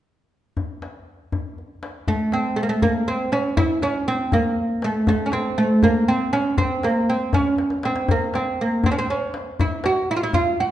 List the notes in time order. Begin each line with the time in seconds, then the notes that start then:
0.57 tombak dum
0.82 tombak tek
1.32 tombak dum
1.58 tombak ka
1.83 tombak tek
2.08 A3, tombak dum
2.32 C4, tombak tek
2.56 A3
2.63 A#3
2.69 A3
2.82 A#3, tombak dum
3.08 C4
3.32 C#4, tombak tek
3.57 E4, tombak dum
3.82 C#4, tombak tek
4.08 C4
4.32 A#3, tombak dum
4.82 A3, tombak tek
5.07 A3, tombak dum
5.26 C#4
5.32 C4, tombak tek
5.58 A3
5.83 A#3, tombak dum
6.08 C4
6.33 C#4, tombak tek
6.58 C4, tombak dum
6.83 A#3, tombak tek
7.09 C4
7.33 C#4, tombak dum
7.58 tombak tek
7.70 tombak ka
7.83 C4, tombak tek
7.96 tombak ka
8.08 A#3, tombak dum
8.34 C4, tombak tek
8.61 A#3
8.84 C4, tombak dum
8.92 C#4
8.99 C4
9.10 C#4
9.34 tombak tek
9.60 E4, tombak dum
9.84 F#4, tombak tek
10.11 E4
10.16 F4
10.23 E4
10.33 F4, tombak dum
10.60 F#4